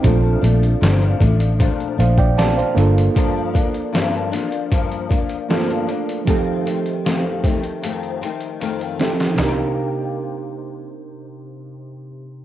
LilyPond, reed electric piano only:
\new Staff \with { instrumentName = "Reed electric piano" } { \time 4/4 \key c \dorian \tempo 4 = 77 << { r2 r8 <c'' f''>16 <d'' g''>16 <d'' a''>16 <c'' f''>8 r16 | r1 | r1 | r1 | } \\ { <c' d' f' a'>2.~ <c' d' f' a'>8 <bes d' f' a'>8~ | <bes d' f' a'>2. <a bes d' f' a'>4 | <f c' ees' g' a'>2.~ <f c' ees' g' a'>8 <f c' ees' g' a'>8 | <c d' ees' g' bes'>1 | } >> }